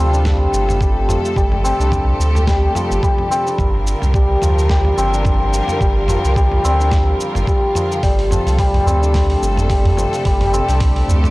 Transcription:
0.00 0.47 D2 medium
0.00 3.55 C3 medium
0.00 1.07 F3 loud
0.00 0.80 G3 medium
0.00 3.54 A3 medium
0.00 1.64 C4 medium
0.00 0.13 D4 medium
0.00 1.34 F4 medium
0.00 3.54 A4 medium
0.13 1.79 D4 medium
0.13 shaker soft
0.25 kick loud
0.25 snare medium
0.25 mid tom medium
0.25 shaker soft
0.53 1.17 G1 loud
0.53 shaker medium
0.69 mid tom medium
0.69 shaker soft
0.81 1.35 G3 medium
0.81 kick medium
0.81 shaker soft
1.09 2.74 F3 medium
1.09 mid tom medium
1.09 shaker medium
1.25 shaker soft
1.36 1.73 G1 medium
1.36 2.46 G3 medium
1.36 3.56 G4 medium
1.36 kick loud
1.36 shaker soft
1.52 mid tom medium
1.64 3.30 C4 medium
1.64 shaker medium
1.79 2.14 C2 loud
1.79 3.46 D4 medium
1.79 shaker soft
1.92 kick loud
1.92 mid tom medium
1.92 shaker soft
2.19 2.69 D2 medium
2.19 shaker medium
2.35 mid tom medium
2.35 shaker soft
2.47 3.02 G3 medium
2.47 kick loud
2.47 snare medium
2.47 shaker soft
2.75 3.63 F3 medium
2.75 mid tom medium
2.75 shaker medium
2.91 2.99 G1 loud
2.91 shaker soft
3.03 3.63 G3 loud
3.03 kick loud
3.03 shaker soft
3.18 mid tom medium
3.31 4.97 C4 medium
3.31 shaker medium
3.46 5.13 D4 medium
3.46 shaker soft
3.58 3.95 G1 loud
3.58 7.99 D3 medium
3.58 7.99 G3 medium
3.58 10.21 F4 medium
3.58 7.99 A#4 medium
3.58 kick loud
3.58 mid tom medium
3.58 shaker soft
3.87 shaker medium
4.02 4.36 C2 loud
4.02 mid tom medium
4.02 shaker soft
4.14 4.69 G3 medium
4.14 kick loud
4.14 shaker soft
4.42 4.92 D2 medium
4.42 6.08 F3 medium
4.42 mid tom medium
4.42 shaker medium
4.59 shaker soft
4.69 5.80 G3 medium
4.69 kick loud
4.69 snare medium
4.69 shaker soft
4.85 mid tom medium
4.97 5.61 G1 loud
4.97 6.64 C4 medium
4.97 shaker medium
5.13 6.79 D4 medium
5.13 shaker soft
5.25 kick loud
5.25 mid tom medium
5.25 shaker soft
5.54 shaker medium
5.68 mid tom medium
5.68 shaker soft
5.81 6.17 G1 medium
5.81 6.35 G3 medium
5.81 kick loud
5.81 shaker soft
6.08 7.74 F3 loud
6.08 mid tom medium
6.08 shaker medium
6.24 6.58 C2 medium
6.24 shaker soft
6.36 7.47 G3 loud
6.36 kick loud
6.36 shaker soft
6.51 mid tom medium
6.64 7.14 D2 medium
6.64 8.86 C4 loud
6.64 shaker medium
6.80 9.02 D4 medium
6.80 shaker soft
6.91 kick loud
6.91 snare medium
6.91 mid tom medium
6.91 shaker soft
7.20 shaker medium
7.35 7.44 G1 loud
7.35 mid tom medium
7.35 shaker soft
7.47 8.02 G3 medium
7.47 kick loud
7.47 shaker soft
7.75 8.08 F3 medium
7.75 mid tom medium
7.75 shaker medium
7.92 shaker soft
8.03 8.39 G1 loud
8.03 11.30 C3 medium
8.03 8.58 G3 medium
8.03 11.30 A3 medium
8.03 11.30 A4 medium
8.03 11.30 D5 medium
8.03 kick loud
8.03 open hi-hat medium
8.03 shaker soft
8.19 open hi-hat soft
8.31 9.96 F3 medium
8.31 mid tom medium
8.31 udu medium
8.31 shaker medium
8.46 8.81 C2 loud
8.46 open hi-hat soft
8.46 shaker soft
8.59 9.69 G3 loud
8.59 kick loud
8.59 open hi-hat medium
8.59 shaker soft
8.74 mid tom medium
8.74 open hi-hat soft
8.86 9.36 D2 medium
8.86 10.53 C4 medium
8.86 udu medium
8.86 shaker medium
9.02 10.68 D4 medium
9.02 shaker soft
9.14 kick loud
9.14 snare medium
9.14 mid tom medium
9.14 open hi-hat medium
9.14 shaker soft
9.30 open hi-hat soft
9.42 10.06 G1 loud
9.42 shaker medium
9.57 mid tom medium
9.57 shaker soft
9.70 10.24 G3 medium
9.70 kick medium
9.70 open hi-hat medium
9.70 shaker soft
9.85 open hi-hat soft
9.85 udu medium
9.97 11.30 F3 medium
9.97 mid tom medium
9.97 shaker medium
10.13 open hi-hat soft
10.13 shaker soft
10.25 10.61 G1 loud
10.25 11.30 G3 loud
10.25 11.30 G4 medium
10.25 kick loud
10.25 open hi-hat medium
10.25 shaker soft
10.41 mid tom medium
10.41 open hi-hat soft
10.53 11.30 C4 medium
10.53 shaker medium
10.69 11.03 C2 loud
10.69 11.30 D4 medium
10.69 open hi-hat soft
10.69 shaker soft
10.80 kick loud
10.80 mid tom medium
10.80 open hi-hat medium
10.80 shaker soft
10.96 open hi-hat soft
11.08 11.30 D2 medium
11.08 udu medium
11.08 shaker medium
11.24 mid tom medium
11.24 shaker soft

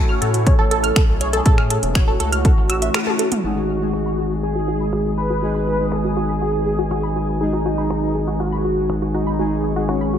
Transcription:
0.00 3.40 E3 medium
0.00 3.40 A3 medium
0.00 3.40 C#4 medium
0.00 3.40 E4 medium
0.00 0.48 F#4 loud
0.00 3.40 C#5 medium
0.09 0.14 F6 medium
0.21 0.54 A2 loud
0.21 0.30 A4 medium
0.21 closed hi-hat medium
0.34 closed hi-hat medium
0.46 1.22 A4 loud
0.46 0.55 C#5 medium
0.46 kick loud
0.46 closed hi-hat medium
0.59 0.91 A1 medium
0.59 0.67 A4 loud
0.71 0.83 A4 loud
0.71 closed hi-hat loud
0.83 0.88 F6 medium
0.83 closed hi-hat medium
0.96 1.04 A4 medium
0.96 finger snap loud
0.96 kick loud
0.96 closed hi-hat medium
1.08 1.41 B1 medium
1.21 1.85 G#4 loud
1.21 1.29 C#5 medium
1.21 closed hi-hat medium
1.33 1.41 A4 loud
1.33 closed hi-hat medium
1.46 1.78 A2 medium
1.46 1.57 A4 loud
1.46 kick loud
1.46 closed hi-hat medium
1.58 1.63 F6 medium
1.58 finger snap soft
1.70 1.79 A4 medium
1.70 closed hi-hat loud
1.83 2.15 E1 medium
1.83 closed hi-hat medium
1.95 3.34 F#4 loud
1.95 2.03 C#5 medium
1.95 finger snap loud
1.95 kick loud
1.95 closed hi-hat medium
2.08 2.16 A4 loud
2.20 2.52 C#2 loud
2.20 2.32 A4 loud
2.20 closed hi-hat medium
2.32 2.37 F6 medium
2.32 closed hi-hat medium
2.45 2.53 A4 medium
2.45 kick loud
2.45 closed hi-hat medium
2.57 2.90 A1 loud
2.70 2.78 E6 loud
2.70 closed hi-hat loud
2.82 2.90 E5 medium
2.82 closed hi-hat medium
2.94 2.99 F6 medium
2.94 finger snap loud
2.94 closed hi-hat medium
2.94 high tom medium
3.07 3.12 A5 medium
3.07 high tom medium
3.19 3.24 A4 medium
3.19 closed hi-hat medium
3.32 closed hi-hat medium
3.32 mid tom medium
3.44 10.19 G#1 medium
3.44 3.78 G#3 medium
3.44 3.78 D#4 medium
3.44 3.52 F#4 medium
3.44 10.19 F#4 medium
3.44 4.33 F#4 loud
3.44 3.78 G#4 loud
3.44 10.19 B4 medium
3.44 10.19 G#5 medium
3.44 7.37 D#6 medium
3.69 3.77 G#4 medium
3.81 5.39 G#3 medium
3.81 5.39 D#4 medium
3.81 3.89 F#4 loud
3.81 5.39 G#4 medium
3.93 4.05 F#4 loud
3.93 finger snap loud
4.06 4.11 B5 medium
4.18 4.26 F#4 medium
4.43 4.51 G#4 medium
4.43 5.08 G#4 loud
4.55 4.64 F#4 loud
4.68 4.80 F#4 loud
4.80 4.85 B5 medium
4.93 5.01 F#4 medium
4.93 finger snap loud
5.17 5.26 G#4 medium
5.17 5.93 B4 medium
5.30 5.38 F#4 loud
5.42 5.77 G#3 medium
5.42 5.77 D#4 medium
5.42 5.54 F#4 loud
5.42 5.77 G#4 medium
5.55 5.60 B5 medium
5.67 5.75 F#4 medium
5.67 closed hi-hat loud
5.79 7.38 G#3 medium
5.79 7.38 D#4 medium
5.79 7.38 G#4 medium
5.92 6.00 G#4 medium
5.92 7.31 G#4 loud
5.92 finger snap loud
6.04 6.12 F#4 medium
6.17 6.28 F#4 loud
6.17 closed hi-hat medium
6.29 6.34 B5 medium
6.41 6.50 F#4 medium
6.66 6.74 G#4 medium
6.79 6.87 F#4 loud
6.91 7.03 F#4 medium
6.91 finger snap loud
7.03 7.08 B5 medium
7.16 7.24 F#4 medium
7.16 closed hi-hat medium
7.41 7.75 G#3 medium
7.41 8.41 D#4 loud
7.41 7.75 D#4 medium
7.41 7.75 G#4 medium
7.41 7.49 G#4 medium
7.41 10.19 C#6 medium
7.53 7.61 F#4 loud
7.66 7.77 F#4 loud
7.66 closed hi-hat loud
7.78 9.36 G#3 medium
7.78 9.36 D#4 medium
7.78 9.36 G#4 medium
7.78 7.83 B5 medium
7.90 7.98 F#4 medium
7.90 finger snap loud
8.15 8.23 G#4 medium
8.15 closed hi-hat medium
8.27 8.36 F#4 loud
8.27 closed hi-hat medium
8.40 8.52 F#4 loud
8.40 9.04 F#4 loud
8.52 8.57 B5 medium
8.65 8.73 F#4 medium
8.65 closed hi-hat loud
8.90 8.98 G#4 medium
8.90 finger snap loud
9.02 9.10 F#4 loud
9.14 9.79 D#4 loud
9.14 9.26 F#4 loud
9.14 closed hi-hat medium
9.27 9.32 B5 medium
9.39 9.73 G#3 medium
9.39 9.73 D#4 medium
9.39 9.47 F#4 medium
9.39 9.73 G#4 medium
9.64 9.72 G#4 medium
9.64 closed hi-hat loud
9.76 10.19 G#3 medium
9.76 10.19 D#4 medium
9.76 9.84 F#4 loud
9.76 10.19 G#4 medium
9.89 10.19 C#4 loud
9.89 10.00 F#4 loud
9.89 finger snap loud
10.01 10.06 B5 medium
10.13 10.19 F#4 medium
10.13 closed hi-hat medium

